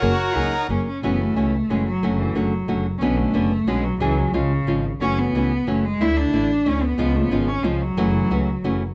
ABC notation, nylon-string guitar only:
X:1
M:3/4
L:1/16
Q:1/4=181
K:F#
V:1 name="Nylon-string guitar"
[F,A,CG] z3 [F,A,CG]2 z2 [F,A,CG]2 z2 | [K:F#m] [C,E,A,CF]4 [C,E,A,CF]2 z2 [C,E,A,CF]2 z2 | [D,A,CF]4 [D,A,CF]2 z2 [D,A,CF]2 z2 | [B,,D,B,CF]4 [B,,D,B,CF]2 z2 [B,,D,B,CF]2 z2 |
[C,F,CFG]4 [C,^E,G,C^E]2 z2 [C,E,G,CE]2 z2 | [C,E,A,CF]4 [C,E,A,CF]2 z2 [C,E,A,CF]2 z2 | [D,A,DE]4 [D,A,DE]2 z2 [D,A,DE]2 z2 | [C,^E,G,C^E]4 [C,E,G,CE]2 z2 [C,E,G,CE]2 z2 |
[C,E,A,CF]4 [C,E,A,CF]2 z2 [C,E,A,CF]2 z2 |]